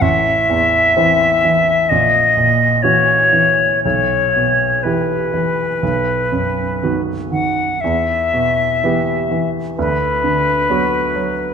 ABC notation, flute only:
X:1
M:4/4
L:1/8
Q:1/4=62
K:Bphr
V:1 name="Flute"
e4 ^d2 ^c2 | ^c2 B4- B f | e3 z B4 |]